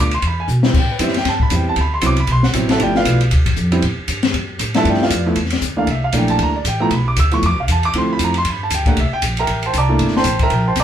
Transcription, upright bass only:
0, 0, Header, 1, 3, 480
1, 0, Start_track
1, 0, Tempo, 256739
1, 1391, Time_signature, 4, 2, 24, 8
1, 20263, End_track
2, 0, Start_track
2, 0, Title_t, "Upright bass"
2, 0, Program_c, 0, 32
2, 0, Note_on_c, 0, 38, 88
2, 402, Note_off_c, 0, 38, 0
2, 413, Note_on_c, 0, 40, 84
2, 881, Note_off_c, 0, 40, 0
2, 893, Note_on_c, 0, 47, 95
2, 1367, Note_off_c, 0, 47, 0
2, 1382, Note_on_c, 0, 45, 78
2, 1848, Note_off_c, 0, 45, 0
2, 1859, Note_on_c, 0, 42, 92
2, 2325, Note_off_c, 0, 42, 0
2, 2336, Note_on_c, 0, 43, 86
2, 2798, Note_off_c, 0, 43, 0
2, 2809, Note_on_c, 0, 40, 92
2, 3282, Note_off_c, 0, 40, 0
2, 3293, Note_on_c, 0, 38, 82
2, 3760, Note_off_c, 0, 38, 0
2, 3771, Note_on_c, 0, 36, 94
2, 4247, Note_off_c, 0, 36, 0
2, 4254, Note_on_c, 0, 35, 96
2, 4728, Note_off_c, 0, 35, 0
2, 4739, Note_on_c, 0, 33, 92
2, 5210, Note_off_c, 0, 33, 0
2, 5225, Note_on_c, 0, 31, 86
2, 5694, Note_off_c, 0, 31, 0
2, 5702, Note_on_c, 0, 35, 98
2, 6172, Note_off_c, 0, 35, 0
2, 6191, Note_on_c, 0, 38, 93
2, 6657, Note_off_c, 0, 38, 0
2, 6665, Note_on_c, 0, 41, 102
2, 7133, Note_off_c, 0, 41, 0
2, 7147, Note_on_c, 0, 45, 90
2, 7409, Note_off_c, 0, 45, 0
2, 7627, Note_on_c, 0, 43, 93
2, 8095, Note_off_c, 0, 43, 0
2, 8104, Note_on_c, 0, 42, 96
2, 8565, Note_off_c, 0, 42, 0
2, 8576, Note_on_c, 0, 45, 94
2, 9050, Note_off_c, 0, 45, 0
2, 9061, Note_on_c, 0, 43, 80
2, 9528, Note_off_c, 0, 43, 0
2, 9539, Note_on_c, 0, 41, 92
2, 9999, Note_off_c, 0, 41, 0
2, 10010, Note_on_c, 0, 40, 88
2, 10488, Note_off_c, 0, 40, 0
2, 10496, Note_on_c, 0, 38, 83
2, 10957, Note_off_c, 0, 38, 0
2, 10968, Note_on_c, 0, 36, 77
2, 11448, Note_off_c, 0, 36, 0
2, 11460, Note_on_c, 0, 34, 84
2, 11934, Note_off_c, 0, 34, 0
2, 11944, Note_on_c, 0, 38, 92
2, 12411, Note_off_c, 0, 38, 0
2, 12422, Note_on_c, 0, 33, 95
2, 12897, Note_off_c, 0, 33, 0
2, 12908, Note_on_c, 0, 35, 83
2, 13380, Note_off_c, 0, 35, 0
2, 13393, Note_on_c, 0, 38, 93
2, 13863, Note_off_c, 0, 38, 0
2, 13880, Note_on_c, 0, 41, 91
2, 14041, Note_off_c, 0, 41, 0
2, 14041, Note_on_c, 0, 38, 60
2, 14165, Note_off_c, 0, 38, 0
2, 14176, Note_on_c, 0, 35, 67
2, 14337, Note_off_c, 0, 35, 0
2, 14349, Note_on_c, 0, 40, 91
2, 14821, Note_off_c, 0, 40, 0
2, 14841, Note_on_c, 0, 38, 84
2, 15307, Note_off_c, 0, 38, 0
2, 15322, Note_on_c, 0, 41, 88
2, 15782, Note_off_c, 0, 41, 0
2, 15793, Note_on_c, 0, 43, 91
2, 16263, Note_off_c, 0, 43, 0
2, 16282, Note_on_c, 0, 38, 90
2, 16748, Note_off_c, 0, 38, 0
2, 16755, Note_on_c, 0, 36, 81
2, 17007, Note_off_c, 0, 36, 0
2, 17237, Note_on_c, 0, 34, 90
2, 17704, Note_off_c, 0, 34, 0
2, 17713, Note_on_c, 0, 33, 87
2, 18181, Note_off_c, 0, 33, 0
2, 18199, Note_on_c, 0, 36, 96
2, 18663, Note_off_c, 0, 36, 0
2, 18679, Note_on_c, 0, 31, 85
2, 19138, Note_off_c, 0, 31, 0
2, 19149, Note_on_c, 0, 33, 92
2, 19616, Note_off_c, 0, 33, 0
2, 19635, Note_on_c, 0, 34, 97
2, 20098, Note_off_c, 0, 34, 0
2, 20108, Note_on_c, 0, 36, 92
2, 20263, Note_off_c, 0, 36, 0
2, 20263, End_track
3, 0, Start_track
3, 0, Title_t, "Muted upright bass strokes"
3, 7436, Note_on_c, 9, 29, 42
3, 7623, Note_off_c, 9, 29, 0
3, 20263, End_track
0, 0, End_of_file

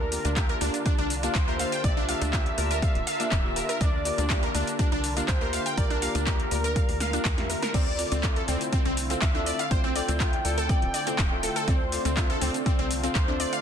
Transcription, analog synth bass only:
0, 0, Header, 1, 2, 480
1, 0, Start_track
1, 0, Tempo, 491803
1, 1797, Time_signature, 4, 2, 24, 8
1, 13287, End_track
2, 0, Start_track
2, 0, Title_t, "Analog synth bass"
2, 0, Program_c, 0, 38
2, 0, Note_on_c, 0, 38, 100
2, 176, Note_off_c, 0, 38, 0
2, 242, Note_on_c, 0, 38, 98
2, 537, Note_off_c, 0, 38, 0
2, 597, Note_on_c, 0, 38, 91
2, 681, Note_off_c, 0, 38, 0
2, 963, Note_on_c, 0, 36, 86
2, 1257, Note_off_c, 0, 36, 0
2, 1317, Note_on_c, 0, 38, 99
2, 1616, Note_off_c, 0, 38, 0
2, 1797, Note_on_c, 0, 36, 101
2, 2097, Note_off_c, 0, 36, 0
2, 2162, Note_on_c, 0, 38, 88
2, 2457, Note_off_c, 0, 38, 0
2, 2517, Note_on_c, 0, 38, 86
2, 2817, Note_off_c, 0, 38, 0
2, 2882, Note_on_c, 0, 26, 100
2, 2959, Note_off_c, 0, 26, 0
2, 3236, Note_on_c, 0, 26, 94
2, 3536, Note_off_c, 0, 26, 0
2, 3717, Note_on_c, 0, 38, 100
2, 4017, Note_off_c, 0, 38, 0
2, 4082, Note_on_c, 0, 38, 99
2, 4377, Note_off_c, 0, 38, 0
2, 4437, Note_on_c, 0, 38, 94
2, 4521, Note_off_c, 0, 38, 0
2, 4802, Note_on_c, 0, 36, 88
2, 5097, Note_off_c, 0, 36, 0
2, 5157, Note_on_c, 0, 38, 102
2, 5457, Note_off_c, 0, 38, 0
2, 5637, Note_on_c, 0, 36, 101
2, 5937, Note_off_c, 0, 36, 0
2, 6002, Note_on_c, 0, 38, 93
2, 6297, Note_off_c, 0, 38, 0
2, 6357, Note_on_c, 0, 38, 83
2, 6657, Note_off_c, 0, 38, 0
2, 6722, Note_on_c, 0, 38, 91
2, 7017, Note_off_c, 0, 38, 0
2, 7076, Note_on_c, 0, 40, 99
2, 7376, Note_off_c, 0, 40, 0
2, 7557, Note_on_c, 0, 38, 98
2, 7857, Note_off_c, 0, 38, 0
2, 7922, Note_on_c, 0, 38, 98
2, 8217, Note_off_c, 0, 38, 0
2, 8276, Note_on_c, 0, 38, 93
2, 8361, Note_off_c, 0, 38, 0
2, 8642, Note_on_c, 0, 36, 93
2, 8937, Note_off_c, 0, 36, 0
2, 8997, Note_on_c, 0, 38, 96
2, 9297, Note_off_c, 0, 38, 0
2, 9477, Note_on_c, 0, 36, 100
2, 9777, Note_off_c, 0, 36, 0
2, 9843, Note_on_c, 0, 38, 91
2, 10137, Note_off_c, 0, 38, 0
2, 10197, Note_on_c, 0, 38, 90
2, 10497, Note_off_c, 0, 38, 0
2, 10563, Note_on_c, 0, 26, 105
2, 10639, Note_off_c, 0, 26, 0
2, 10917, Note_on_c, 0, 26, 92
2, 11217, Note_off_c, 0, 26, 0
2, 11397, Note_on_c, 0, 38, 101
2, 11697, Note_off_c, 0, 38, 0
2, 11762, Note_on_c, 0, 38, 94
2, 12057, Note_off_c, 0, 38, 0
2, 12116, Note_on_c, 0, 38, 94
2, 12201, Note_off_c, 0, 38, 0
2, 12482, Note_on_c, 0, 36, 90
2, 12777, Note_off_c, 0, 36, 0
2, 12836, Note_on_c, 0, 38, 100
2, 13136, Note_off_c, 0, 38, 0
2, 13287, End_track
0, 0, End_of_file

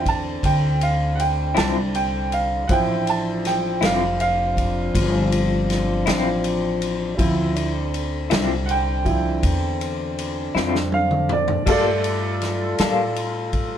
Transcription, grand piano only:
0, 0, Header, 1, 2, 480
1, 0, Start_track
1, 0, Key_signature, -1, "minor"
1, 0, Tempo, 749064
1, 1723, Time_signature, 12, 3, 24, 8
1, 8829, End_track
2, 0, Start_track
2, 0, Title_t, "Grand piano"
2, 0, Program_c, 0, 0
2, 54, Note_on_c, 0, 81, 64
2, 280, Note_off_c, 0, 81, 0
2, 291, Note_on_c, 0, 79, 68
2, 519, Note_off_c, 0, 79, 0
2, 532, Note_on_c, 0, 77, 59
2, 740, Note_on_c, 0, 78, 51
2, 760, Note_off_c, 0, 77, 0
2, 768, Note_off_c, 0, 78, 0
2, 770, Note_on_c, 0, 79, 66
2, 999, Note_off_c, 0, 79, 0
2, 1009, Note_on_c, 0, 81, 65
2, 1239, Note_off_c, 0, 81, 0
2, 1252, Note_on_c, 0, 79, 73
2, 1481, Note_off_c, 0, 79, 0
2, 1497, Note_on_c, 0, 77, 59
2, 1714, Note_on_c, 0, 78, 55
2, 1723, Note_off_c, 0, 77, 0
2, 1729, Note_on_c, 0, 53, 43
2, 1732, Note_on_c, 0, 60, 40
2, 1736, Note_on_c, 0, 64, 49
2, 1739, Note_off_c, 0, 78, 0
2, 1745, Note_on_c, 0, 79, 77
2, 1967, Note_off_c, 0, 79, 0
2, 1983, Note_on_c, 0, 81, 63
2, 2207, Note_off_c, 0, 81, 0
2, 2223, Note_on_c, 0, 79, 70
2, 2421, Note_off_c, 0, 53, 0
2, 2422, Note_off_c, 0, 60, 0
2, 2425, Note_off_c, 0, 64, 0
2, 2446, Note_off_c, 0, 79, 0
2, 2463, Note_on_c, 0, 77, 66
2, 2686, Note_off_c, 0, 77, 0
2, 2697, Note_on_c, 0, 77, 75
2, 4105, Note_off_c, 0, 77, 0
2, 4600, Note_on_c, 0, 53, 41
2, 4602, Note_on_c, 0, 60, 40
2, 4606, Note_on_c, 0, 64, 49
2, 4920, Note_off_c, 0, 53, 0
2, 4922, Note_off_c, 0, 60, 0
2, 4923, Note_off_c, 0, 64, 0
2, 5548, Note_on_c, 0, 78, 53
2, 5574, Note_off_c, 0, 78, 0
2, 5580, Note_on_c, 0, 79, 75
2, 5797, Note_on_c, 0, 53, 36
2, 5802, Note_on_c, 0, 60, 34
2, 5804, Note_on_c, 0, 64, 39
2, 6015, Note_off_c, 0, 53, 0
2, 6018, Note_off_c, 0, 60, 0
2, 6018, Note_off_c, 0, 64, 0
2, 6983, Note_off_c, 0, 79, 0
2, 7010, Note_on_c, 0, 77, 71
2, 7237, Note_off_c, 0, 77, 0
2, 7256, Note_on_c, 0, 74, 66
2, 7480, Note_off_c, 0, 74, 0
2, 7484, Note_on_c, 0, 57, 40
2, 7489, Note_on_c, 0, 55, 38
2, 7493, Note_on_c, 0, 65, 48
2, 7495, Note_on_c, 0, 69, 68
2, 7500, Note_on_c, 0, 74, 80
2, 8418, Note_off_c, 0, 69, 0
2, 8421, Note_off_c, 0, 74, 0
2, 8829, Note_off_c, 0, 55, 0
2, 8829, Note_off_c, 0, 57, 0
2, 8829, Note_off_c, 0, 65, 0
2, 8829, End_track
0, 0, End_of_file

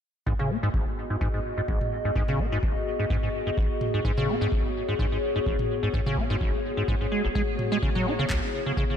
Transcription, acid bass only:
0, 0, Header, 1, 2, 480
1, 0, Start_track
1, 0, Key_signature, 5, "minor"
1, 0, Tempo, 472441
1, 272, Time_signature, 4, 2, 24, 8
1, 9110, End_track
2, 0, Start_track
2, 0, Title_t, "Acid bass"
2, 0, Program_c, 0, 38
2, 271, Note_on_c, 0, 44, 100
2, 343, Note_off_c, 0, 44, 0
2, 402, Note_on_c, 0, 49, 98
2, 511, Note_on_c, 0, 59, 97
2, 526, Note_off_c, 0, 49, 0
2, 583, Note_off_c, 0, 59, 0
2, 641, Note_on_c, 0, 44, 101
2, 702, Note_off_c, 0, 44, 0
2, 751, Note_on_c, 0, 32, 81
2, 859, Note_off_c, 0, 32, 0
2, 1120, Note_on_c, 0, 44, 71
2, 1182, Note_off_c, 0, 44, 0
2, 1230, Note_on_c, 0, 44, 96
2, 1302, Note_off_c, 0, 44, 0
2, 1360, Note_on_c, 0, 44, 67
2, 1422, Note_off_c, 0, 44, 0
2, 1601, Note_on_c, 0, 44, 72
2, 1638, Note_off_c, 0, 44, 0
2, 1710, Note_on_c, 0, 32, 80
2, 1819, Note_off_c, 0, 32, 0
2, 2081, Note_on_c, 0, 44, 76
2, 2142, Note_off_c, 0, 44, 0
2, 2193, Note_on_c, 0, 44, 105
2, 2264, Note_off_c, 0, 44, 0
2, 2322, Note_on_c, 0, 49, 103
2, 2433, Note_on_c, 0, 59, 104
2, 2448, Note_off_c, 0, 49, 0
2, 2504, Note_off_c, 0, 59, 0
2, 2563, Note_on_c, 0, 44, 102
2, 2623, Note_off_c, 0, 44, 0
2, 2672, Note_on_c, 0, 32, 82
2, 2779, Note_off_c, 0, 32, 0
2, 3041, Note_on_c, 0, 44, 75
2, 3102, Note_off_c, 0, 44, 0
2, 3152, Note_on_c, 0, 44, 95
2, 3224, Note_off_c, 0, 44, 0
2, 3281, Note_on_c, 0, 44, 73
2, 3342, Note_off_c, 0, 44, 0
2, 3522, Note_on_c, 0, 44, 73
2, 3558, Note_off_c, 0, 44, 0
2, 3632, Note_on_c, 0, 32, 86
2, 3739, Note_off_c, 0, 32, 0
2, 4003, Note_on_c, 0, 44, 80
2, 4063, Note_off_c, 0, 44, 0
2, 4112, Note_on_c, 0, 44, 99
2, 4184, Note_off_c, 0, 44, 0
2, 4243, Note_on_c, 0, 49, 103
2, 4353, Note_on_c, 0, 59, 103
2, 4368, Note_off_c, 0, 49, 0
2, 4424, Note_off_c, 0, 59, 0
2, 4483, Note_on_c, 0, 44, 98
2, 4543, Note_off_c, 0, 44, 0
2, 4593, Note_on_c, 0, 32, 79
2, 4700, Note_off_c, 0, 32, 0
2, 4963, Note_on_c, 0, 44, 75
2, 5023, Note_off_c, 0, 44, 0
2, 5073, Note_on_c, 0, 44, 99
2, 5144, Note_off_c, 0, 44, 0
2, 5204, Note_on_c, 0, 44, 69
2, 5263, Note_off_c, 0, 44, 0
2, 5443, Note_on_c, 0, 44, 74
2, 5479, Note_off_c, 0, 44, 0
2, 5554, Note_on_c, 0, 32, 86
2, 5660, Note_off_c, 0, 32, 0
2, 5922, Note_on_c, 0, 44, 78
2, 5983, Note_off_c, 0, 44, 0
2, 6032, Note_on_c, 0, 44, 98
2, 6104, Note_off_c, 0, 44, 0
2, 6161, Note_on_c, 0, 49, 103
2, 6272, Note_on_c, 0, 59, 106
2, 6287, Note_off_c, 0, 49, 0
2, 6344, Note_off_c, 0, 59, 0
2, 6403, Note_on_c, 0, 44, 103
2, 6463, Note_off_c, 0, 44, 0
2, 6512, Note_on_c, 0, 32, 85
2, 6620, Note_off_c, 0, 32, 0
2, 6881, Note_on_c, 0, 44, 72
2, 6942, Note_off_c, 0, 44, 0
2, 6992, Note_on_c, 0, 44, 97
2, 7063, Note_off_c, 0, 44, 0
2, 7120, Note_on_c, 0, 44, 72
2, 7182, Note_off_c, 0, 44, 0
2, 7231, Note_on_c, 0, 56, 76
2, 7339, Note_off_c, 0, 56, 0
2, 7362, Note_on_c, 0, 32, 73
2, 7399, Note_off_c, 0, 32, 0
2, 7471, Note_on_c, 0, 56, 103
2, 7543, Note_off_c, 0, 56, 0
2, 7842, Note_on_c, 0, 56, 103
2, 7903, Note_off_c, 0, 56, 0
2, 7951, Note_on_c, 0, 49, 102
2, 8023, Note_off_c, 0, 49, 0
2, 8081, Note_on_c, 0, 54, 102
2, 8191, Note_on_c, 0, 64, 104
2, 8206, Note_off_c, 0, 54, 0
2, 8263, Note_off_c, 0, 64, 0
2, 8322, Note_on_c, 0, 49, 99
2, 8383, Note_off_c, 0, 49, 0
2, 8432, Note_on_c, 0, 37, 81
2, 8539, Note_off_c, 0, 37, 0
2, 8802, Note_on_c, 0, 49, 74
2, 8863, Note_off_c, 0, 49, 0
2, 8914, Note_on_c, 0, 49, 94
2, 8984, Note_off_c, 0, 49, 0
2, 9043, Note_on_c, 0, 49, 70
2, 9103, Note_off_c, 0, 49, 0
2, 9110, End_track
0, 0, End_of_file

